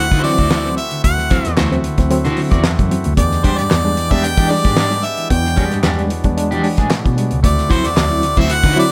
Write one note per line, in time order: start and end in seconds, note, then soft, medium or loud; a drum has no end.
0.00 3.14 A3 medium
0.00 3.14 C4 medium
0.00 3.14 E4 medium
0.00 3.14 F#4 medium
0.00 0.22 F#5 loud
0.11 0.21 D3 medium
0.11 0.32 E4 medium
0.11 0.32 F#4 medium
0.11 0.31 C5 medium
0.11 kick loud
0.11 snare soft
0.11 closed hi-hat soft
0.24 0.38 E3 medium
0.24 0.38 F#3 medium
0.24 0.38 C4 loud
0.24 0.74 D5 loud
0.24 open hi-hat medium
0.38 0.48 D2 medium
0.38 0.50 E4 medium
0.38 0.50 F#4 medium
0.38 0.50 C5 medium
0.38 kick medium
0.38 snare soft
0.38 closed hi-hat soft
0.51 0.68 E4 medium
0.51 0.68 F#4 medium
0.51 0.68 C5 loud
0.51 snare loud
0.51 clap medium
0.65 0.77 E3 medium
0.65 0.77 F#3 medium
0.65 0.78 C4 medium
0.65 closed hi-hat soft
0.77 1.02 E5 medium
0.77 closed hi-hat medium
0.91 1.03 D3 medium
0.91 closed hi-hat medium
1.04 1.14 D2 medium
1.04 1.18 D3 medium
1.04 1.54 F#5 medium
1.04 kick loud
1.04 closed hi-hat loud
1.18 1.23 F#3 soft
1.18 1.23 C4 medium
1.18 snare soft
1.30 1.45 E3 medium
1.30 1.45 F#3 medium
1.30 1.45 C4 medium
1.30 1.47 E4 medium
1.30 1.48 F#4 medium
1.30 1.48 C5 medium
1.30 kick loud
1.30 closed hi-hat medium
1.44 1.54 E2 medium
1.44 snare soft
1.44 closed hi-hat medium
1.57 1.77 D2 loud
1.57 1.74 E4 medium
1.57 1.74 F#4 medium
1.57 1.75 C5 loud
1.57 snare loud
1.57 clap medium
1.71 1.84 E3 medium
1.71 1.84 F#3 medium
1.71 1.84 C4 medium
1.71 closed hi-hat soft
1.84 1.98 D3 medium
1.84 closed hi-hat medium
1.98 2.07 D2 medium
1.98 2.11 E3 medium
1.98 2.09 F#3 medium
1.98 2.10 C4 medium
1.98 kick medium
1.98 snare soft
1.98 closed hi-hat medium
2.11 2.22 D3 soft
2.11 2.25 F#3 medium
2.11 2.25 C4 medium
2.11 closed hi-hat medium
2.25 2.37 D3 medium
2.25 2.34 D3 loud
2.25 2.41 E4 medium
2.25 2.41 F#4 medium
2.25 2.40 C5 medium
2.25 snare soft
2.25 closed hi-hat soft
2.37 2.51 F#3 medium
2.37 2.52 C4 medium
2.37 open hi-hat medium
2.51 2.61 E2 medium
2.51 2.64 E4 soft
2.51 2.63 F#4 medium
2.51 2.63 D5 medium
2.51 kick medium
2.51 snare soft
2.51 closed hi-hat soft
2.64 2.75 F#2 medium
2.64 2.70 F#3 soft
2.64 2.70 C4 soft
2.64 snare loud
2.64 clap medium
2.78 2.88 F#2 medium
2.78 2.91 D3 medium
2.78 kick medium
2.78 closed hi-hat soft
2.91 3.05 E3 medium
2.91 3.05 F#3 medium
2.91 3.05 C4 medium
2.91 closed hi-hat medium
3.04 3.14 D2 medium
3.04 closed hi-hat medium
3.17 3.28 E2 loud
3.17 3.31 E3 medium
3.17 7.40 G#3 medium
3.17 7.40 B3 medium
3.17 7.40 D4 medium
3.17 5.29 G4 medium
3.17 3.46 D5 medium
3.17 kick medium
3.17 closed hi-hat loud
3.31 3.37 G#3 soft
3.31 3.37 D4 soft
3.31 snare soft
3.31 closed hi-hat soft
3.44 3.58 G3 medium
3.44 3.61 G#3 medium
3.44 3.58 G#3 medium
3.44 3.61 D4 medium
3.44 3.58 D4 medium
3.44 3.61 G4 loud
3.44 3.60 C5 medium
3.44 kick loud
3.44 closed hi-hat medium
3.58 3.68 G2 medium
3.58 4.13 D5 loud
3.58 snare soft
3.58 closed hi-hat medium
3.71 3.91 E2 loud
3.71 snare loud
3.71 clap medium
3.84 3.97 G3 medium
3.84 3.97 G#3 medium
3.84 3.97 D4 medium
3.84 closed hi-hat soft
3.97 4.12 E3 medium
3.97 closed hi-hat medium
4.11 4.20 E2 medium
4.11 4.24 G3 medium
4.11 4.24 G#3 medium
4.11 4.27 G#3 medium
4.11 4.27 D4 medium
4.11 4.24 D4 medium
4.11 4.27 G4 medium
4.11 4.26 E5 loud
4.11 kick loud
4.11 snare soft
4.11 closed hi-hat medium
4.24 4.35 E3 soft
4.24 4.52 G5 loud
4.24 closed hi-hat loud
4.37 4.47 E3 medium
4.37 4.54 G#3 medium
4.37 4.54 D4 medium
4.37 4.53 G4 medium
4.37 kick loud
4.37 snare soft
4.37 closed hi-hat soft
4.50 4.65 G3 medium
4.50 4.65 G#3 medium
4.50 4.65 D4 medium
4.50 5.06 D5 loud
4.50 open hi-hat medium
4.64 4.74 G#2 medium
4.64 4.75 G#3 medium
4.64 4.76 D4 medium
4.64 4.77 G4 medium
4.64 kick medium
4.64 snare soft
4.64 closed hi-hat soft
4.76 4.94 G#3 medium
4.76 4.94 D4 medium
4.76 4.94 G4 medium
4.76 snare loud
4.76 clap medium
4.91 5.04 G3 medium
4.91 5.04 G#3 medium
4.91 5.04 D4 medium
4.91 closed hi-hat soft
5.04 5.30 E5 medium
5.04 closed hi-hat medium
5.17 5.29 E3 medium
5.17 closed hi-hat medium
5.30 5.41 E2 loud
5.30 5.45 E3 medium
5.30 7.41 F#3 medium
5.30 5.80 G5 medium
5.30 kick loud
5.30 closed hi-hat loud
5.45 5.50 G#3 soft
5.45 5.50 D4 soft
5.45 snare soft
5.56 5.71 G3 medium
5.56 5.77 G#3 medium
5.56 5.71 G#3 medium
5.56 5.77 D4 medium
5.56 5.71 D4 medium
5.56 5.78 G4 medium
5.56 kick loud
5.56 closed hi-hat medium
5.71 5.81 G2 medium
5.71 snare soft
5.71 closed hi-hat medium
5.83 6.03 E2 medium
5.83 6.00 G#3 medium
5.83 6.01 D4 loud
5.83 6.01 G4 medium
5.83 snare loud
5.83 clap medium
5.97 6.10 G3 medium
5.97 6.10 G#3 medium
5.97 6.11 D4 medium
5.97 closed hi-hat soft
6.10 6.25 E3 medium
6.10 closed hi-hat medium
6.24 6.34 E2 medium
6.24 6.37 G3 medium
6.24 6.35 G#3 medium
6.24 6.36 D4 medium
6.24 kick medium
6.24 closed hi-hat soft
6.37 6.48 E3 soft
6.37 6.51 G#3 medium
6.37 6.51 D4 medium
6.37 closed hi-hat loud
6.51 6.63 E3 medium
6.51 6.61 E3 medium
6.51 6.67 G#3 medium
6.51 6.67 D4 medium
6.51 6.67 G4 medium
6.51 closed hi-hat soft
6.63 6.78 G#3 medium
6.63 6.78 D4 medium
6.63 open hi-hat medium
6.77 6.87 A2 medium
6.77 6.90 G#3 medium
6.77 6.90 D4 medium
6.77 6.90 G#4 medium
6.77 kick medium
6.77 snare soft
6.77 closed hi-hat soft
6.90 7.01 B2 soft
6.90 6.96 G#3 soft
6.90 6.96 D4 soft
6.90 snare loud
6.90 clap medium
7.04 7.14 B2 medium
7.04 7.17 E3 medium
7.04 kick medium
7.04 closed hi-hat soft
7.16 7.31 G3 medium
7.16 7.31 G#3 medium
7.16 7.31 D4 medium
7.16 closed hi-hat medium
7.31 7.41 C#2 medium
7.31 closed hi-hat medium
7.43 7.54 D2 loud
7.43 7.58 D3 medium
7.43 8.92 A3 medium
7.43 8.92 C4 medium
7.43 8.92 E4 medium
7.43 8.92 F#4 medium
7.43 7.73 D5 medium
7.43 kick loud
7.43 closed hi-hat loud
7.57 7.63 C4 soft
7.57 7.63 E4 soft
7.57 snare soft
7.57 closed hi-hat soft
7.69 7.84 F#3 medium
7.69 7.84 C4 medium
7.69 7.87 E4 medium
7.69 7.84 E4 medium
7.69 7.87 F#4 medium
7.69 7.88 C5 loud
7.69 7.88 C5 medium
7.69 kick loud
7.69 closed hi-hat medium
7.84 7.94 E2 medium
7.84 8.39 D5 loud
7.84 snare soft
7.84 closed hi-hat medium
7.97 8.17 D2 medium
7.97 snare loud
7.97 clap medium
8.10 8.23 F#3 medium
8.10 8.23 C4 medium
8.10 8.23 E4 medium
8.10 closed hi-hat soft
8.23 8.37 D3 medium
8.23 closed hi-hat medium
8.37 8.47 D2 medium
8.37 8.50 F#3 medium
8.37 8.50 C4 medium
8.37 8.50 E4 medium
8.37 8.54 E4 medium
8.37 8.54 F#4 medium
8.37 8.53 C5 loud
8.37 8.53 E5 loud
8.37 kick medium
8.37 snare soft
8.37 closed hi-hat soft
8.50 8.61 D3 soft
8.50 8.78 F#5 loud
8.50 closed hi-hat loud
8.64 8.73 D3 medium
8.64 8.85 E4 medium
8.64 8.84 F#4 medium
8.64 8.84 C5 medium
8.64 kick medium
8.64 snare soft
8.76 8.91 F#3 loud
8.76 8.91 C4 medium
8.76 8.91 E4 loud
8.76 8.92 D5 loud
8.76 open hi-hat medium